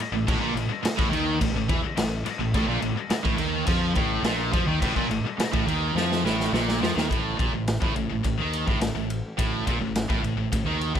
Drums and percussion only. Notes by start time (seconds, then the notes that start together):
0.00 crash
0.28 kick, crash
0.57 crash
0.85 snare, crash
0.99 kick
1.13 crash
1.41 kick, crash
1.69 kick, crash
1.97 snare, crash
2.26 crash
2.54 kick, crash
2.82 crash
3.10 snare, crash
3.25 kick
3.38 crash
3.67 kick, crash
3.95 kick, crash
4.24 snare, crash
4.53 kick, crash
4.82 kick, crash
4.96 kick
5.11 crash
5.40 snare, crash
5.54 kick
5.68 crash
5.97 snare
6.12 snare
6.26 snare
6.40 snare
6.54 snare
6.68 snare
6.83 snare
6.98 snare
7.11 kick, ride
7.39 kick, ride
7.67 snare, ride
7.82 kick
7.96 ride
8.24 kick, ride
8.53 ride
8.68 kick
8.81 snare, ride
9.10 ride
9.39 kick, ride
9.67 kick, ride
9.95 snare, ride
10.10 kick
10.24 ride
10.53 kick, ride
10.81 ride
10.95 kick, snare